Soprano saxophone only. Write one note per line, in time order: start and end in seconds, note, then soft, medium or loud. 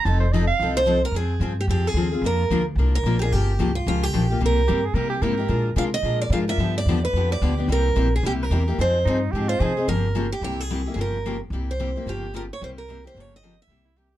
0.05 0.20 A5 loud
0.20 0.33 C5 medium
0.32 0.47 D#5 medium
0.47 0.73 F5 loud
4.67 4.86 G4 medium
4.84 4.96 G#4 medium
4.95 5.09 A#4 medium
5.10 5.23 G4 medium
5.22 5.71 A#4 medium
9.05 9.33 D#4 medium
9.31 9.50 G4 medium
9.48 9.61 F4 medium
9.59 9.87 G#4 medium
13.85 13.98 E4 medium
13.97 14.17 G4 medium